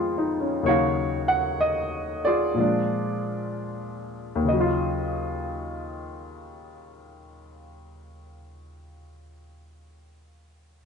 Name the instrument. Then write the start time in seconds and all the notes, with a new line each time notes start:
grand piano
Already playing: F2 D#3 G#3 B3 F4 G#4 B4 D#5
0.18 D#4
0.41 C#4
0.63 D#2 C#3 F#3 C#5
0.68 D#4 F#4 F5
1.28 F#5
1.61 D#5
2.25 F4 G#4 D5
2.54 A#2 F3 G#3
2.60 D4
4.35 D#2
4.44 C#3
4.48 F#3 D#5
4.60 F4